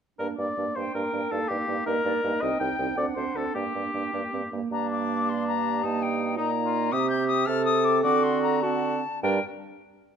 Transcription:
0.19 G2 A#3 D4 A#4
0.38 G2 A#3 D4 D5
0.57 G2 A#3 D4
0.76 G2 A#3 D4 C5 G5
0.94 G2 A#3 D4 A#4
1.12 G2 A#3 D4
1.31 G2 A#3 D#4 A4 F5
1.49 G2 A#3 D#4 G4
1.67 G2 A#3 D#4
1.85 G2 A#3 D#4 A#4 D#5
2.05 G2 A#3 D#4 D5
2.23 G2 A#3 D#4 D#5
2.41 C2 C4 D#4 D#5 G5
2.60 C2 C4 D#4 G5
2.79 C2 C4 D#4
2.97 D2 C4 D4 D5 F#5
3.16 D2 C4 D4 C5
3.35 D2 C4 D4 A4
3.54 G2 A#3 D4 G4 G5
3.75 G2 A#3 D4
3.94 G2 A#3 D4
4.12 G2 A#3 D4
4.32 G2 A#3 C4
4.51 G2 A#3
4.71 G2 A#3 D4 A#5
4.91 D6
5.28 G4 C6
5.47 A#5
5.83 G2 A#3 D#4 A5
6.02 G5
6.38 A#2 A#3 D#4 A#5
6.66 F4
6.92 C3 C4 G4 D#6
7.10 G6
7.28 D#6
7.45 C3 C4 A4 F6
7.65 D#6
7.84 D6
8.03 D3 C4 F#4 D6
8.23 C6
8.43 A#5
8.62 C4 F#4 A5
9.23 G2 G3 D4 A#4 G5

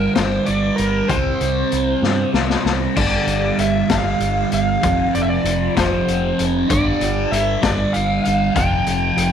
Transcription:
Already playing: G2 D3 G3 A#4
0.15 G1 C5, snare, closed hi-hat
0.46 G1 G2 D3 G3 D5, closed hi-hat
0.76 G1 A#4, closed hi-hat
1.08 C2 C3 G3 C4 C5, kick, closed hi-hat
1.41 C2, closed hi-hat
1.72 C2, closed hi-hat
2.02 G2, snare
2.33 C2 C3 G3 C4, snare
2.50 snare
2.65 C2, snare
2.95 G1 G2 D3 G3 D5, kick, crash
3.27 G1, closed hi-hat
3.58 G1 E5, closed hi-hat
3.89 G1 G2 D3 G3 F5, kick, snare, closed hi-hat
4.20 G1, closed hi-hat
4.52 G1 F5, closed hi-hat
4.82 F1 F2 C3 F3, kick, closed hi-hat
5.14 F1 D5, closed hi-hat
5.22 E5
5.29 D5
5.44 F1, closed hi-hat
5.76 F1 F2 C3 F3 C5, kick, snare, closed hi-hat
6.08 F1, closed hi-hat
6.39 F1, closed hi-hat
6.69 G1 G2 D3 G3 D5, kick, closed hi-hat
7.01 G1, closed hi-hat
7.31 G1 E5, closed hi-hat
7.61 G1 G2 D3 G3 D5, kick, snare, closed hi-hat
7.93 G1 F5, closed hi-hat
8.24 G1 F5, closed hi-hat
8.55 F1 F2 C3 F3 G5, kick, closed hi-hat
8.86 F1, closed hi-hat
9.17 F1, closed hi-hat

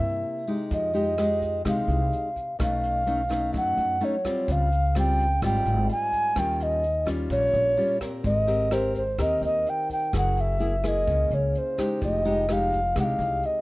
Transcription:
Already playing: C3 A#3 E4 G4 E5
0.00 G2
0.47 G#3 D#4 G4
0.71 F2 F3 D#5, kick, closed hi-hat
0.94 G#3 D#4 G4, closed hi-hat
1.18 G#3 D#4 G4, cross-stick, closed hi-hat
1.42 kick, closed hi-hat
1.65 C2 C3 G#3 D#4 G4 F5, kick, cross-stick, closed hi-hat
1.88 C2, closed hi-hat
2.13 closed hi-hat
2.36 kick, closed hi-hat
2.59 B1 B2 A3 C#4 D#4 F5, kick, cross-stick, closed hi-hat
2.83 closed hi-hat
3.06 A3 C#4 D#4, closed hi-hat
3.29 A3 C#4 D#4, kick, cross-stick, closed hi-hat
3.53 F#2 F#3, kick, closed hi-hat
3.57 F#5
3.77 F#2, closed hi-hat
4.01 A3 C#4 D#4 C#5, closed hi-hat
4.25 G3 C4 F4, kick, cross-stick, closed hi-hat
4.48 C#2 C#3 F5, kick, closed hi-hat
4.72 closed hi-hat
4.95 G3 C4 F4, cross-stick, closed hi-hat
4.99 G5
5.19 kick, closed hi-hat
5.42 G#1 G#2 G3 C4 F4 G5, kick, cross-stick, closed hi-hat
5.66 G#1, closed hi-hat
5.89 G#5, closed hi-hat
6.12 kick, closed hi-hat
6.36 D#2 D#3 G3 C#4 F4 G5, kick, cross-stick, closed hi-hat
6.60 D#5, closed hi-hat
6.83 closed hi-hat
7.06 G3 C#4 F4, kick, cross-stick, closed hi-hat
7.30 A#1 A#2 C#5, kick, closed hi-hat
7.54 A#1, closed hi-hat
7.77 G3 C#4 F4, closed hi-hat
8.01 C4 G4 A#4, kick, cross-stick, closed hi-hat
8.24 G#1 G#3 D#5, kick, closed hi-hat
8.47 C4 G4 A#4, closed hi-hat
8.71 C4 G4 A#4 C5, cross-stick, closed hi-hat
8.95 C5, kick, closed hi-hat
9.18 D#2 D#3 C4 G4 A#4 D#5, kick, cross-stick, closed hi-hat
9.41 D#2 D#5, closed hi-hat
9.66 G5, closed hi-hat
9.90 G5, kick, closed hi-hat
10.13 F#1 F#3 A#3 E4 G#4, kick, cross-stick, closed hi-hat
10.17 F#5
10.37 E5, closed hi-hat
10.60 A#3 E4 G#4, closed hi-hat
10.84 A#3 E4 G#4, kick, cross-stick, closed hi-hat
10.88 D#5
11.07 C#2 C#3, kick, closed hi-hat
11.31 C#2 C#5, closed hi-hat
11.55 C5, closed hi-hat
11.78 G#3 D#4 G4, kick, cross-stick, closed hi-hat
12.01 F1 F3 D#5, kick, closed hi-hat
12.25 G#3 D#4 G4, closed hi-hat
12.49 G#3 D#4 G4 F5, cross-stick, closed hi-hat
12.72 kick, closed hi-hat
12.96 C2 C3 G#3 D#4 G4 F#5, kick, cross-stick, closed hi-hat
13.04 F5
13.19 C2, closed hi-hat
13.43 D#5, closed hi-hat

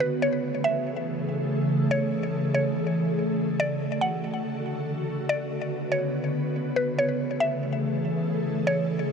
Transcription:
Already playing: C#3 D3 B3 F#4 B4
0.00 B4
0.22 C#3 E3 A3 G#4 A4 C#5
0.64 E5
1.91 C#5
2.54 C#5
3.60 D3 F#4 A4 D5
4.01 F#5
5.29 C#3 B3 B4 D5
5.92 C#5
6.76 B4
6.98 E3 A3 G#4 A4 C#5
7.40 E5
8.67 C#5

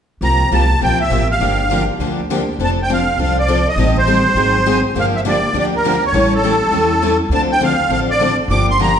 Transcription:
0.21 C2 C3 F3 A#3 F4 G4 A#5
0.51 C2 C3 F3 A#3 F4 G4 A5
0.81 A#1 C3 F3 A#3 F4 G4 G5
1.01 E5
1.10 A1 C3 F3 A#3 F4 G4
1.31 F5
1.40 G1 D3 F3 A#3 D4 G4
1.70 D3 F3 A#3 D4 G4
1.99 D2 D3 F3 A#3 D4 G4
2.30 D3 F3 A#3 D4 G4
2.59 F1 F3 C4 D4 A4
2.64 A5
2.83 G5
2.89 F3 C4 D4 A4 F5
3.17 C2 F3 C4 D4 A4
3.23 F5
3.39 D5
3.48 F3 C4 D4 A4
3.68 D#5
3.76 A1 D#3 G3 C4 G4 A4
3.98 C5
4.07 D#3 G3 C4 G4 A4
4.34 G#1 D#3 F#3 C4 D#4 G#4
4.66 D#3 F#3 C4 D#4 G#4
4.94 G1 D3 F3 A#3 D4 G4
4.99 F5
5.16 E5
5.25 D3 F3 A#3 D4 G4 D5
5.53 D2 D3 F3 A#3 D4 G4
5.59 D5
5.76 A#4
5.84 D3 F3 A#3 D4 G4
6.06 C#5
6.12 A1 E3 G3 C#4 E4 A4
6.35 A4
6.43 E3 G3 C#4 E4 A4
6.71 E2 E3 G3 C#4 E4 A4
7.02 E3 G3 C#4 E4 A4
7.29 D2 D3 F3 C4 D4 A4
7.35 A5
7.52 G5
7.60 D3 F3 C4 D4 A4 F5
7.89 A1 D3 F3 C4 D4 A4 F5
8.10 D5
8.20 D3 F3 C4 D4 A4
8.48 G1 D3 F3 A#3 D4 G4 D6
8.70 C6
8.79 D3 F3 A#3 D4 G4 A#5

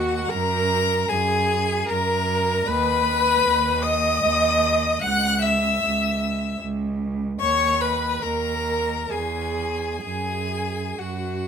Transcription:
Already playing: D#2 F#4 F#5
0.28 F#2 A#4 A#5
1.08 F#2 G#4 G#5
1.87 F#2 A#4 A#5
2.67 D#2 B4 B5
3.46 D#2
3.82 D#5 D#6
4.24 D#2
5.01 C#2 F#5 F#6
5.42 E5 E6
5.84 C#2
6.61 C#2
7.40 D#2 C#5 C#6
7.81 B4 B5
8.22 D#2 A#4 A#5
9.10 E2 G#4 G#5
10.01 F#2 G#4 G#5
10.98 F#2 F#4 F#5

